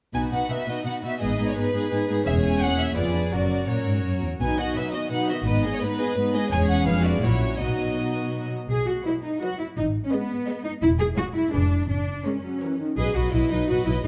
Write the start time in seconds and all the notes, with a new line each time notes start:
0.14 B1 B2 B3 D#4 F#4 B4 G#5
0.32 B2 B3 D#4 F#4 B4 F#5
0.50 B2 B3 D#4 F#4 B4 E5
0.68 B2 B3 D#4 F#4 B4 D#5
0.85 B2 B3 D#4 F#4 B4 F#5
1.03 B2 B3 D#4 F#4 B4 E5
1.21 G#1 G#2 B3 D#4 G#4 B4 D#5
1.39 G#2 B3 D#4 G#4 B4
1.49 C#5
1.56 G#2 B3 D#4 G#4 B4
1.74 G#2 B3 D#4 G#4 B4
1.91 G#2 B3 D#4 G#4 B4
2.09 G#2 B3 D#4 G#4 B4
2.26 E1 E2 G#3 C#4 G#4 C#5 E5
2.45 G#5
2.62 A#3 F#5
2.79 E5
2.96 F1 F2 B3 F4 G#4 B4 D5
3.15 D4
3.32 F#1 F#2 F#3 C#4 F#4 A#4 D5
3.68 A#2 F#3 C#4 F#4 A#4 C#5
3.86 G#2
4.04 F#2
4.22 E2
4.41 B1 B2 F#3 D#4 B4 G#5
4.59 D#3 B3 F#4 D#5 F#5
4.76 B2 F#3 D#4 B4 E5
4.93 D#3 B3 F#4 D#5
5.11 B2 F#3 D#4 B4 F#5
5.29 D#3 B3 F#4 D#5 E5
5.46 G#1 G#2 B3 D#4 B4 D#5
5.64 G#3 B3 G#4 D#5
5.74 C#5
5.82 G#2 B3 D#4 B4
6.00 G#3 B3 G#4 D#5
6.17 G#2 B3 D#4 B4
6.35 G#3 B3 G#4 D#5
6.51 E1 E2 G#3 C#4 G#4 C#5 G#5
6.69 F#5
6.86 F1 F2 G#3 D4 G#4 B4 F5
7.04 F#4 D5
7.22 A#1 A#2 F#3 C#4 E4 F#4 C#5
7.58 B1 B2 F#3 B3 D#4 F#4 D#5
8.70 B1 G#4
8.88 F#4
9.06 F#3 E4 B4 D#5
9.24 D#4
9.42 F#3 F#4 B4 D#5
9.59 E4
9.77 G#1 D#4
10.04 C#4
10.12 G#3 B3 B4 D#5
10.48 G#3 B4 D#5
10.65 D#4
10.82 E1 E4
11.00 G#4
11.17 G#3 F#4 G#4 C#5
11.35 E4
11.53 F1 G#3 D4 G#4 B4
11.89 F#1 D4
12.25 G#3 C#4 A#4 C#5
12.43 F#3
12.62 E3 A#4 C#5
12.80 D#3
12.97 B1 F#3 G#4 B4 D#5
13.16 B1 F#3 F#4 B4 D#5
13.33 B1 F#3 E4 B4 D#5
13.51 B1 F#3 D#4 B4 D#5
13.68 B1 F#3 F#4 B4 D#5
13.86 B1 F#3 E4 B4 D#5
14.04 G#1 G#3 D#4